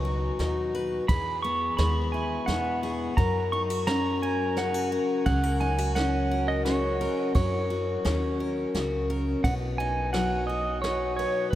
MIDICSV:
0, 0, Header, 1, 5, 480
1, 0, Start_track
1, 0, Tempo, 695894
1, 750, Time_signature, 3, 2, 24, 8
1, 7967, End_track
2, 0, Start_track
2, 0, Title_t, "Pedal steel guitar"
2, 0, Program_c, 0, 26
2, 0, Note_on_c, 0, 85, 87
2, 481, Note_off_c, 0, 85, 0
2, 748, Note_on_c, 0, 83, 87
2, 980, Note_off_c, 0, 83, 0
2, 983, Note_on_c, 0, 85, 96
2, 1219, Note_off_c, 0, 85, 0
2, 1222, Note_on_c, 0, 83, 81
2, 1463, Note_on_c, 0, 80, 66
2, 1473, Note_off_c, 0, 83, 0
2, 1698, Note_on_c, 0, 78, 77
2, 1714, Note_off_c, 0, 80, 0
2, 1927, Note_off_c, 0, 78, 0
2, 2186, Note_on_c, 0, 82, 79
2, 2430, Note_on_c, 0, 85, 93
2, 2435, Note_off_c, 0, 82, 0
2, 2494, Note_off_c, 0, 85, 0
2, 2670, Note_on_c, 0, 82, 90
2, 2914, Note_on_c, 0, 80, 71
2, 2917, Note_off_c, 0, 82, 0
2, 3157, Note_on_c, 0, 78, 72
2, 3159, Note_off_c, 0, 80, 0
2, 3377, Note_off_c, 0, 78, 0
2, 3628, Note_on_c, 0, 78, 88
2, 3863, Note_off_c, 0, 78, 0
2, 3866, Note_on_c, 0, 80, 89
2, 4104, Note_off_c, 0, 80, 0
2, 4107, Note_on_c, 0, 78, 94
2, 4471, Note_on_c, 0, 75, 77
2, 4480, Note_off_c, 0, 78, 0
2, 4585, Note_off_c, 0, 75, 0
2, 4588, Note_on_c, 0, 73, 87
2, 5042, Note_off_c, 0, 73, 0
2, 5072, Note_on_c, 0, 73, 72
2, 6004, Note_off_c, 0, 73, 0
2, 6511, Note_on_c, 0, 78, 89
2, 6576, Note_off_c, 0, 78, 0
2, 6748, Note_on_c, 0, 80, 91
2, 6984, Note_off_c, 0, 80, 0
2, 6987, Note_on_c, 0, 78, 91
2, 7221, Note_on_c, 0, 75, 70
2, 7237, Note_off_c, 0, 78, 0
2, 7449, Note_off_c, 0, 75, 0
2, 7461, Note_on_c, 0, 73, 89
2, 7693, Note_off_c, 0, 73, 0
2, 7701, Note_on_c, 0, 73, 85
2, 7930, Note_off_c, 0, 73, 0
2, 7936, Note_on_c, 0, 71, 70
2, 7967, Note_off_c, 0, 71, 0
2, 7967, End_track
3, 0, Start_track
3, 0, Title_t, "Steel-string acoustic guitar"
3, 0, Program_c, 1, 25
3, 0, Note_on_c, 1, 47, 65
3, 0, Note_on_c, 1, 54, 66
3, 0, Note_on_c, 1, 63, 62
3, 0, Note_on_c, 1, 71, 64
3, 33, Note_on_c, 1, 66, 56
3, 262, Note_off_c, 1, 47, 0
3, 267, Note_off_c, 1, 63, 0
3, 270, Note_on_c, 1, 47, 55
3, 275, Note_on_c, 1, 63, 53
3, 507, Note_off_c, 1, 71, 0
3, 515, Note_on_c, 1, 71, 71
3, 721, Note_off_c, 1, 47, 0
3, 723, Note_off_c, 1, 66, 0
3, 724, Note_off_c, 1, 63, 0
3, 724, Note_off_c, 1, 71, 0
3, 750, Note_off_c, 1, 54, 0
3, 751, Note_on_c, 1, 52, 74
3, 757, Note_on_c, 1, 68, 65
3, 996, Note_on_c, 1, 59, 59
3, 1231, Note_on_c, 1, 56, 66
3, 1476, Note_on_c, 1, 64, 52
3, 1705, Note_off_c, 1, 59, 0
3, 1708, Note_on_c, 1, 47, 59
3, 1713, Note_on_c, 1, 59, 55
3, 1944, Note_off_c, 1, 68, 0
3, 1953, Note_on_c, 1, 68, 69
3, 2160, Note_off_c, 1, 47, 0
3, 2162, Note_off_c, 1, 52, 0
3, 2162, Note_off_c, 1, 56, 0
3, 2164, Note_off_c, 1, 64, 0
3, 2191, Note_off_c, 1, 68, 0
3, 2192, Note_off_c, 1, 59, 0
3, 2192, Note_on_c, 1, 54, 71
3, 2199, Note_on_c, 1, 70, 62
3, 2434, Note_on_c, 1, 63, 55
3, 2553, Note_off_c, 1, 63, 0
3, 2553, Note_on_c, 1, 66, 54
3, 2671, Note_on_c, 1, 61, 66
3, 2915, Note_off_c, 1, 70, 0
3, 2917, Note_on_c, 1, 70, 66
3, 3149, Note_on_c, 1, 49, 53
3, 3150, Note_off_c, 1, 66, 0
3, 3153, Note_on_c, 1, 63, 44
3, 3270, Note_off_c, 1, 63, 0
3, 3271, Note_on_c, 1, 66, 43
3, 3391, Note_off_c, 1, 70, 0
3, 3394, Note_on_c, 1, 70, 69
3, 3625, Note_off_c, 1, 54, 0
3, 3628, Note_off_c, 1, 70, 0
3, 3628, Note_on_c, 1, 54, 74
3, 3630, Note_off_c, 1, 49, 0
3, 3630, Note_on_c, 1, 68, 56
3, 3631, Note_off_c, 1, 66, 0
3, 3749, Note_off_c, 1, 68, 0
3, 3749, Note_on_c, 1, 70, 56
3, 3867, Note_on_c, 1, 63, 62
3, 3888, Note_off_c, 1, 61, 0
3, 3989, Note_off_c, 1, 63, 0
3, 3989, Note_on_c, 1, 66, 55
3, 4110, Note_on_c, 1, 61, 65
3, 4347, Note_off_c, 1, 70, 0
3, 4355, Note_on_c, 1, 70, 67
3, 4587, Note_off_c, 1, 66, 0
3, 4591, Note_on_c, 1, 49, 62
3, 4595, Note_on_c, 1, 66, 54
3, 4826, Note_off_c, 1, 70, 0
3, 4834, Note_on_c, 1, 70, 70
3, 5042, Note_off_c, 1, 61, 0
3, 5044, Note_off_c, 1, 70, 0
3, 5065, Note_off_c, 1, 54, 0
3, 5068, Note_on_c, 1, 54, 67
3, 5071, Note_off_c, 1, 49, 0
3, 5074, Note_on_c, 1, 70, 62
3, 5310, Note_off_c, 1, 66, 0
3, 5313, Note_on_c, 1, 66, 61
3, 5550, Note_on_c, 1, 61, 62
3, 5788, Note_off_c, 1, 70, 0
3, 5796, Note_on_c, 1, 70, 59
3, 6032, Note_on_c, 1, 49, 57
3, 6034, Note_off_c, 1, 66, 0
3, 6036, Note_on_c, 1, 66, 57
3, 6268, Note_off_c, 1, 70, 0
3, 6276, Note_on_c, 1, 70, 65
3, 6482, Note_off_c, 1, 61, 0
3, 6485, Note_off_c, 1, 70, 0
3, 6512, Note_off_c, 1, 49, 0
3, 6515, Note_on_c, 1, 47, 70
3, 6519, Note_on_c, 1, 71, 65
3, 6760, Note_on_c, 1, 63, 61
3, 6989, Note_off_c, 1, 54, 0
3, 6992, Note_on_c, 1, 54, 70
3, 7236, Note_off_c, 1, 66, 0
3, 7239, Note_on_c, 1, 66, 53
3, 7467, Note_off_c, 1, 47, 0
3, 7472, Note_off_c, 1, 63, 0
3, 7475, Note_on_c, 1, 47, 54
3, 7481, Note_on_c, 1, 63, 53
3, 7715, Note_off_c, 1, 71, 0
3, 7718, Note_on_c, 1, 71, 67
3, 7925, Note_off_c, 1, 47, 0
3, 7927, Note_off_c, 1, 66, 0
3, 7928, Note_off_c, 1, 63, 0
3, 7967, Note_off_c, 1, 54, 0
3, 7967, Note_off_c, 1, 71, 0
3, 7967, End_track
4, 0, Start_track
4, 0, Title_t, "Upright bass"
4, 0, Program_c, 2, 32
4, 0, Note_on_c, 2, 37, 74
4, 200, Note_off_c, 2, 37, 0
4, 271, Note_on_c, 2, 39, 74
4, 679, Note_off_c, 2, 39, 0
4, 752, Note_on_c, 2, 40, 81
4, 1164, Note_off_c, 2, 40, 0
4, 1229, Note_on_c, 2, 39, 75
4, 1638, Note_off_c, 2, 39, 0
4, 1709, Note_on_c, 2, 40, 80
4, 2117, Note_off_c, 2, 40, 0
4, 2189, Note_on_c, 2, 42, 81
4, 3429, Note_off_c, 2, 42, 0
4, 3631, Note_on_c, 2, 37, 80
4, 4870, Note_off_c, 2, 37, 0
4, 5071, Note_on_c, 2, 42, 82
4, 5484, Note_off_c, 2, 42, 0
4, 5554, Note_on_c, 2, 39, 78
4, 5961, Note_off_c, 2, 39, 0
4, 6033, Note_on_c, 2, 37, 73
4, 6440, Note_off_c, 2, 37, 0
4, 6512, Note_on_c, 2, 35, 77
4, 7751, Note_off_c, 2, 35, 0
4, 7967, End_track
5, 0, Start_track
5, 0, Title_t, "Drums"
5, 273, Note_on_c, 9, 38, 66
5, 273, Note_on_c, 9, 51, 46
5, 342, Note_off_c, 9, 38, 0
5, 342, Note_off_c, 9, 51, 0
5, 752, Note_on_c, 9, 36, 118
5, 753, Note_on_c, 9, 51, 69
5, 821, Note_off_c, 9, 36, 0
5, 822, Note_off_c, 9, 51, 0
5, 1232, Note_on_c, 9, 38, 90
5, 1232, Note_on_c, 9, 51, 58
5, 1301, Note_off_c, 9, 38, 0
5, 1301, Note_off_c, 9, 51, 0
5, 1711, Note_on_c, 9, 38, 75
5, 1711, Note_on_c, 9, 51, 47
5, 1780, Note_off_c, 9, 38, 0
5, 1780, Note_off_c, 9, 51, 0
5, 1952, Note_on_c, 9, 51, 49
5, 2021, Note_off_c, 9, 51, 0
5, 2190, Note_on_c, 9, 36, 113
5, 2190, Note_on_c, 9, 51, 52
5, 2259, Note_off_c, 9, 36, 0
5, 2259, Note_off_c, 9, 51, 0
5, 2670, Note_on_c, 9, 38, 81
5, 2670, Note_on_c, 9, 51, 51
5, 2739, Note_off_c, 9, 38, 0
5, 2739, Note_off_c, 9, 51, 0
5, 3150, Note_on_c, 9, 38, 72
5, 3150, Note_on_c, 9, 51, 45
5, 3219, Note_off_c, 9, 38, 0
5, 3219, Note_off_c, 9, 51, 0
5, 3630, Note_on_c, 9, 51, 60
5, 3631, Note_on_c, 9, 36, 110
5, 3699, Note_off_c, 9, 51, 0
5, 3700, Note_off_c, 9, 36, 0
5, 4113, Note_on_c, 9, 38, 75
5, 4113, Note_on_c, 9, 51, 57
5, 4182, Note_off_c, 9, 38, 0
5, 4182, Note_off_c, 9, 51, 0
5, 4591, Note_on_c, 9, 38, 71
5, 4591, Note_on_c, 9, 51, 55
5, 4660, Note_off_c, 9, 38, 0
5, 4660, Note_off_c, 9, 51, 0
5, 4831, Note_on_c, 9, 51, 59
5, 4900, Note_off_c, 9, 51, 0
5, 5072, Note_on_c, 9, 36, 114
5, 5073, Note_on_c, 9, 51, 67
5, 5141, Note_off_c, 9, 36, 0
5, 5142, Note_off_c, 9, 51, 0
5, 5553, Note_on_c, 9, 38, 89
5, 5553, Note_on_c, 9, 51, 54
5, 5622, Note_off_c, 9, 38, 0
5, 5622, Note_off_c, 9, 51, 0
5, 6035, Note_on_c, 9, 38, 69
5, 6035, Note_on_c, 9, 51, 45
5, 6104, Note_off_c, 9, 38, 0
5, 6104, Note_off_c, 9, 51, 0
5, 6513, Note_on_c, 9, 36, 104
5, 6513, Note_on_c, 9, 51, 60
5, 6582, Note_off_c, 9, 36, 0
5, 6582, Note_off_c, 9, 51, 0
5, 6993, Note_on_c, 9, 38, 80
5, 6993, Note_on_c, 9, 51, 60
5, 7062, Note_off_c, 9, 38, 0
5, 7062, Note_off_c, 9, 51, 0
5, 7475, Note_on_c, 9, 38, 69
5, 7475, Note_on_c, 9, 51, 48
5, 7544, Note_off_c, 9, 38, 0
5, 7544, Note_off_c, 9, 51, 0
5, 7716, Note_on_c, 9, 51, 55
5, 7785, Note_off_c, 9, 51, 0
5, 7967, End_track
0, 0, End_of_file